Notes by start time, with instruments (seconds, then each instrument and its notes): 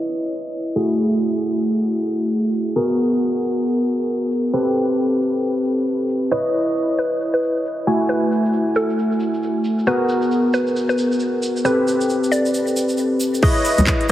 Already playing: tine electric piano E4 B4 C#5 D#5
0.01 shaker
0.23 shaker
0.32 shaker
0.46 shaker
0.54 shaker
0.76 tine electric piano A3 E4 F#4 G#4, shaker
0.89 shaker
0.98 shaker
1.20 shaker
1.34 shaker
1.43 shaker
1.65 shaker
1.79 shaker
1.87 shaker
2.00 shaker
2.10 shaker
2.23 shaker
2.32 shaker
2.54 shaker
2.67 shaker
2.75 tine electric piano B3 F#4 G#4 A#4, shaker
2.99 shaker
3.12 shaker
3.20 shaker
3.43 shaker
3.55 shaker
3.64 shaker
3.78 shaker
3.87 shaker
4.00 shaker
4.09 shaker
4.31 shaker
4.45 shaker
4.53 tine electric piano C4 G4 A4 B4, shaker
4.76 shaker
4.89 shaker
4.99 shaker
5.21 shaker
5.33 shaker
5.42 shaker
5.56 shaker
5.65 shaker
5.78 shaker
5.88 shaker
6.09 shaker
6.23 shaker
6.31 tine electric piano E4 B4 C#5 D#5, synth pluck B4, shaker
6.53 shaker
6.68 shaker
6.77 shaker
6.98 synth pluck B4, shaker
7.11 shaker
7.20 shaker
7.33 synth pluck B4, shaker
7.43 shaker
7.56 shaker
7.66 shaker
7.87 tine electric piano A3 E4 F#4 G#5, shaker
8.00 shaker
8.09 synth pluck B4, shaker
8.32 shaker
8.45 shaker
8.53 shaker
8.75 synth pluck A4, shaker
8.89 shaker
8.99 shaker
9.12 shaker
9.20 shaker
9.34 shaker
9.43 shaker
9.64 shaker
9.79 shaker
9.86 tine electric piano B3 F#4 G#4 A#4, synth pluck B4, shaker
10.09 shaker
10.22 shaker
10.31 shaker
10.53 synth pluck B4, shaker
10.67 shaker
10.76 shaker
10.89 synth pluck B4, shaker
10.98 shaker
11.12 shaker
11.20 shaker
11.43 shaker
11.57 shaker
11.65 tine electric piano C4 G4 A4 B4, synth pluck B4, shaker
11.88 shaker
12.01 shaker
12.09 shaker
12.24 shaker
12.32 synth pluck D5, shaker
12.45 shaker
12.54 shaker
12.67 shaker
12.77 shaker
12.89 shaker
12.97 shaker
13.20 shaker
13.34 shaker
13.43 tine electric piano E4 B4 C#5 D#5, synth pluck G#4 B4, kick, crash, shaker
13.65 open hi-hat, shaker
13.78 wobble bass C#2, closed hi-hat, high conga, shaker
13.87 kick, clap, shaker
14.01 closed hi-hat